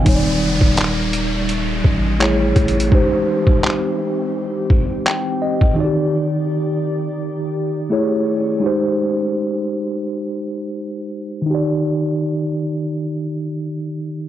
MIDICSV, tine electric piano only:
0, 0, Header, 1, 2, 480
1, 0, Start_track
1, 0, Key_signature, -3, "major"
1, 0, Tempo, 714286
1, 40, Time_signature, 4, 2, 24, 8
1, 9600, End_track
2, 0, Start_track
2, 0, Title_t, "Tine electric piano"
2, 0, Program_c, 0, 4
2, 0, Control_c, 0, 64, 127
2, 17, Note_on_c, 0, 51, 73
2, 33, Note_on_c, 0, 63, 73
2, 47, Note_on_c, 0, 55, 72
2, 48, Control_c, 0, 64, 0
2, 59, Note_on_c, 0, 73, 72
2, 96, Note_off_c, 0, 73, 0
2, 104, Note_on_c, 0, 74, 89
2, 156, Control_c, 0, 64, 127
2, 1442, Note_off_c, 0, 51, 0
2, 1449, Note_off_c, 0, 63, 0
2, 1456, Note_off_c, 0, 55, 0
2, 1468, Note_on_c, 0, 57, 68
2, 1476, Note_on_c, 0, 64, 70
2, 1483, Note_on_c, 0, 68, 66
2, 1485, Note_off_c, 0, 74, 0
2, 1488, Control_c, 0, 64, 0
2, 1490, Note_on_c, 0, 73, 78
2, 1593, Control_c, 0, 64, 127
2, 1938, Note_on_c, 0, 56, 80
2, 1951, Note_on_c, 0, 63, 69
2, 1954, Note_off_c, 0, 57, 0
2, 1958, Note_off_c, 0, 64, 0
2, 1961, Note_off_c, 0, 68, 0
2, 1965, Note_off_c, 0, 73, 0
2, 1966, Note_on_c, 0, 67, 73
2, 1968, Control_c, 0, 64, 0
2, 1980, Note_on_c, 0, 72, 87
2, 2102, Control_c, 0, 64, 127
2, 3399, Note_on_c, 0, 79, 66
2, 3622, Note_off_c, 0, 79, 0
2, 3641, Note_on_c, 0, 75, 67
2, 3842, Note_off_c, 0, 56, 0
2, 3848, Note_off_c, 0, 63, 0
2, 3856, Note_off_c, 0, 67, 0
2, 3858, Note_on_c, 0, 51, 81
2, 3863, Note_off_c, 0, 72, 0
2, 3863, Note_off_c, 0, 75, 0
2, 3872, Note_on_c, 0, 63, 68
2, 3886, Note_on_c, 0, 66, 56
2, 3888, Control_c, 0, 64, 0
2, 3899, Note_on_c, 0, 74, 88
2, 3929, Note_on_c, 0, 67, 69
2, 3930, Note_off_c, 0, 66, 0
2, 4008, Control_c, 0, 64, 127
2, 5282, Note_off_c, 0, 51, 0
2, 5289, Note_off_c, 0, 63, 0
2, 5302, Note_off_c, 0, 74, 0
2, 5307, Note_on_c, 0, 57, 70
2, 5314, Note_on_c, 0, 64, 65
2, 5317, Note_off_c, 0, 67, 0
2, 5321, Note_on_c, 0, 68, 66
2, 5328, Control_c, 0, 64, 0
2, 5328, Note_on_c, 0, 73, 76
2, 5457, Control_c, 0, 64, 127
2, 5778, Note_on_c, 0, 56, 75
2, 5790, Note_on_c, 0, 63, 71
2, 5793, Note_off_c, 0, 57, 0
2, 5797, Note_off_c, 0, 64, 0
2, 5800, Note_off_c, 0, 68, 0
2, 5804, Note_off_c, 0, 73, 0
2, 5805, Note_on_c, 0, 67, 69
2, 5808, Control_c, 0, 64, 0
2, 5820, Note_on_c, 0, 72, 84
2, 5940, Control_c, 0, 64, 127
2, 7673, Note_on_c, 0, 51, 79
2, 7682, Note_off_c, 0, 56, 0
2, 7688, Note_off_c, 0, 63, 0
2, 7696, Note_off_c, 0, 67, 0
2, 7702, Note_on_c, 0, 63, 70
2, 7703, Note_off_c, 0, 72, 0
2, 7729, Control_c, 0, 64, 0
2, 7731, Note_on_c, 0, 67, 69
2, 7758, Note_on_c, 0, 74, 86
2, 7841, Control_c, 0, 64, 127
2, 9600, Note_off_c, 0, 51, 0
2, 9600, Note_off_c, 0, 63, 0
2, 9600, Note_off_c, 0, 67, 0
2, 9600, Note_off_c, 0, 74, 0
2, 9600, End_track
0, 0, End_of_file